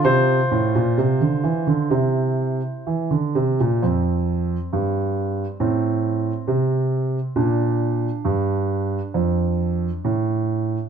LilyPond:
<<
  \new Staff \with { instrumentName = "Grand piano" } { \time 4/4 \key f \major \tempo 4 = 66 << { c''2.~ c''8 r8 | r1 | r1 | } \\ { f'2 e'2 | c'2 c'2 | d'1 | } >> }
  \new Staff \with { instrumentName = "Grand piano" } { \clef bass \time 4/4 \key f \major c8 a,16 bes,16 c16 d16 e16 d16 c4 e16 d16 c16 bes,16 | f,4 g,4 a,4 c4 | bes,4 g,4 f,4 a,4 | }
>>